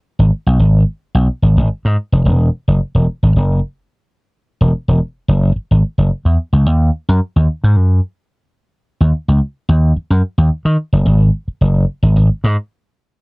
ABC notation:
X:1
M:4/4
L:1/16
Q:1/4=109
K:G#m
V:1 name="Slap bass" clef=bass
z G,,, z B,,, G,,,2 z2 B,,, z G,,, G,,, z G,, z ^E,,, | E,,,2 z F,,, z E,,, z G,,, F,,,2 z6 | z E,,, z E,,, z2 F,,,2 z G,,, z F,,, z E,, z C,, | D,,2 z F,, z D,, z G,, F,,2 z6 |
z D,, z C,, z2 D,,2 z F,, z D,, z D, z F,,, | G,,,2 z2 F,,,2 z G,,, G,,, z G,, z4 z |]